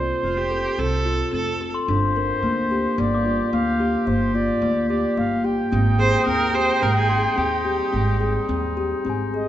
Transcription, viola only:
0, 0, Header, 1, 2, 480
1, 0, Start_track
1, 0, Tempo, 547445
1, 1653, Time_signature, 7, 2, 24, 8
1, 5012, Tempo, 557103
1, 8258, End_track
2, 0, Start_track
2, 0, Title_t, "Viola"
2, 0, Program_c, 0, 41
2, 208, Note_on_c, 0, 65, 72
2, 325, Note_on_c, 0, 67, 83
2, 338, Note_off_c, 0, 65, 0
2, 690, Note_on_c, 0, 69, 98
2, 704, Note_off_c, 0, 67, 0
2, 1162, Note_off_c, 0, 69, 0
2, 1167, Note_on_c, 0, 69, 89
2, 1505, Note_off_c, 0, 69, 0
2, 5254, Note_on_c, 0, 72, 91
2, 5473, Note_off_c, 0, 72, 0
2, 5491, Note_on_c, 0, 70, 99
2, 5724, Note_on_c, 0, 72, 95
2, 5737, Note_off_c, 0, 70, 0
2, 5964, Note_on_c, 0, 70, 85
2, 5976, Note_off_c, 0, 72, 0
2, 6082, Note_off_c, 0, 70, 0
2, 6089, Note_on_c, 0, 68, 80
2, 6445, Note_on_c, 0, 67, 64
2, 6458, Note_off_c, 0, 68, 0
2, 7404, Note_off_c, 0, 67, 0
2, 8258, End_track
0, 0, End_of_file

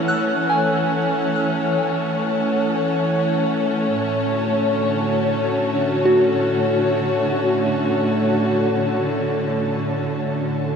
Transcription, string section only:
0, 0, Header, 1, 2, 480
1, 0, Start_track
1, 0, Tempo, 500000
1, 10329, End_track
2, 0, Start_track
2, 0, Title_t, "String section"
2, 0, Program_c, 0, 48
2, 0, Note_on_c, 0, 52, 91
2, 0, Note_on_c, 0, 57, 51
2, 0, Note_on_c, 0, 61, 79
2, 0, Note_on_c, 0, 73, 70
2, 0, Note_on_c, 0, 78, 81
2, 3770, Note_off_c, 0, 52, 0
2, 3770, Note_off_c, 0, 78, 0
2, 3778, Note_on_c, 0, 45, 61
2, 4117, Note_on_c, 0, 50, 83
2, 4142, Note_on_c, 0, 66, 70
2, 10329, Note_off_c, 0, 45, 0
2, 10329, Note_off_c, 0, 50, 0
2, 10329, Note_off_c, 0, 57, 0
2, 10329, Note_off_c, 0, 61, 0
2, 10329, Note_off_c, 0, 66, 0
2, 10329, Note_off_c, 0, 73, 0
2, 10329, End_track
0, 0, End_of_file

